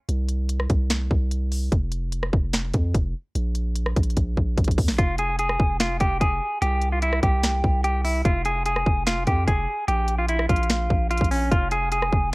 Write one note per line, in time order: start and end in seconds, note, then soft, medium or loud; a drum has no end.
0.09 0.67 C2 loud
0.09 closed hi-hat medium
0.29 closed hi-hat medium
0.49 closed hi-hat medium
0.60 cross-stick medium
0.70 1.09 C2 loud
0.70 kick medium
0.70 closed hi-hat medium
0.90 finger snap medium
0.90 snare loud
0.90 closed hi-hat medium
1.11 1.70 C2 loud
1.11 kick medium
1.31 closed hi-hat medium
1.52 open hi-hat medium
1.72 2.31 F1 loud
1.72 kick loud
1.72 closed hi-hat medium
1.92 closed hi-hat medium
2.12 closed hi-hat medium
2.23 cross-stick medium
2.33 2.72 F1 loud
2.33 kick loud
2.53 finger snap medium
2.53 snare loud
2.53 closed hi-hat medium
2.74 2.94 F2 loud
2.74 kick medium
2.74 closed hi-hat medium
2.94 3.14 F1 loud
2.94 kick loud
2.94 closed hi-hat medium
3.35 3.94 A#1 loud
3.35 closed hi-hat medium
3.55 closed hi-hat medium
3.76 closed hi-hat medium
3.86 cross-stick medium
3.96 4.16 A#1 loud
3.96 kick loud
3.96 closed hi-hat medium
4.03 closed hi-hat soft
4.10 closed hi-hat soft
4.17 4.36 A#1 loud
4.17 kick medium
4.17 closed hi-hat medium
4.37 4.57 A#1 loud
4.37 kick medium
4.58 4.80 A#1 loud
4.58 kick medium
4.58 closed hi-hat medium
4.64 kick medium
4.64 closed hi-hat medium
4.71 closed hi-hat medium
4.78 4.90 F2 medium
4.78 kick loud
4.78 open hi-hat medium
4.88 4.98 A#1 loud
4.88 snare medium
4.98 5.57 F1 loud
4.98 5.16 F4 medium
4.98 kick loud
4.98 closed hi-hat medium
5.18 5.36 G#4 medium
5.18 closed hi-hat medium
5.39 5.78 G#4 medium
5.39 closed hi-hat medium
5.49 cross-stick medium
5.60 5.99 F1 loud
5.60 kick loud
5.80 5.98 F4 medium
5.80 finger snap medium
5.80 snare loud
5.80 closed hi-hat medium
6.00 6.20 F1 loud
6.00 6.18 G4 medium
6.00 kick medium
6.00 closed hi-hat medium
6.21 6.41 F1 loud
6.21 6.59 G#4 medium
6.21 kick medium
6.21 closed hi-hat medium
6.62 7.21 C2 loud
6.62 6.91 G4 medium
6.62 closed hi-hat medium
6.82 closed hi-hat medium
6.92 7.01 F4 medium
7.02 7.20 E4 medium
7.02 closed hi-hat medium
7.13 cross-stick medium
7.23 7.62 C2 loud
7.23 7.81 G4 medium
7.23 kick loud
7.23 closed hi-hat medium
7.43 finger snap medium
7.43 snare loud
7.43 closed hi-hat medium
7.64 8.23 C2 loud
7.64 kick medium
7.84 8.02 G4 medium
7.84 closed hi-hat medium
8.05 8.22 E4 medium
8.05 open hi-hat medium
8.25 8.84 F1 loud
8.25 8.43 F4 medium
8.25 kick loud
8.25 closed hi-hat medium
8.45 8.63 G#4 medium
8.45 closed hi-hat medium
8.65 9.04 G#4 medium
8.65 closed hi-hat medium
8.76 cross-stick medium
8.86 9.25 F1 loud
8.86 kick loud
9.07 9.24 F4 medium
9.07 finger snap medium
9.07 snare loud
9.07 closed hi-hat medium
9.27 9.47 F2 loud
9.27 9.45 G4 medium
9.27 kick medium
9.27 closed hi-hat medium
9.47 9.67 F1 loud
9.47 9.86 G#4 medium
9.47 kick loud
9.47 closed hi-hat medium
9.88 10.47 A#1 loud
9.88 10.17 G4 loud
9.88 closed hi-hat medium
10.08 closed hi-hat medium
10.19 10.28 F4 medium
10.29 10.47 E4 medium
10.29 closed hi-hat medium
10.39 cross-stick medium
10.49 10.89 A#1 loud
10.49 11.07 F4 medium
10.49 kick medium
10.49 closed hi-hat medium
10.56 closed hi-hat medium
10.63 closed hi-hat soft
10.70 finger snap medium
10.70 snare loud
10.70 closed hi-hat medium
10.90 11.20 A#1 loud
10.90 kick medium
11.11 11.28 F4 medium
11.11 closed hi-hat medium
11.18 11.50 A#1 loud
11.18 kick medium
11.18 closed hi-hat medium
11.24 closed hi-hat medium
11.31 11.49 C#4 medium
11.31 open hi-hat medium
11.51 12.10 F1 loud
11.51 11.69 F4 medium
11.51 kick loud
11.51 closed hi-hat medium
11.71 11.89 G#4 medium
11.71 closed hi-hat medium
11.92 12.31 G#4 medium
11.92 closed hi-hat medium
12.03 cross-stick medium
12.13 12.34 F1 loud
12.13 kick medium